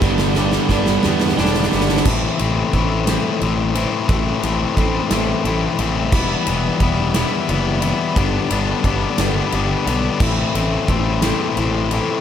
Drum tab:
CC |------------------------|x-----------------------|------------------------|x-----------------------|
RD |------------------------|----x---x---x---x---x---|x---x---x---x---x---x---|----x---x---x---x---x---|
SD |o-o-o-o-o-o-o-oooooooooo|------------o-----------|------------o-----------|------------o-----------|
BD |o-------o---------------|o-------o---------------|o-------o---------------|o-------o---------------|

CC |------------------------|x-----------------------|
RD |x---x---x---x---x---x---|----x---x---x---x---x---|
SD |------------o-----------|------------o-----------|
BD |o-------o---------------|o-------o---------------|